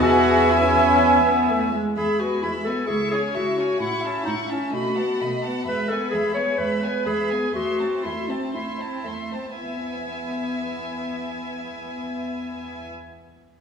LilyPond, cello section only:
\new Staff \with { instrumentName = "Cello section" } { \clef bass \time 4/4 \key e \major \tempo 4 = 124 fis'4 e'2 r4 | e,4 e,4 cis,4 cis,4 | a,4 a,4 b,4 b,4 | e,4 e,4 e,4 e,4 |
e,4 e,4 e,4 e,4 | e,1~ | e,1 | }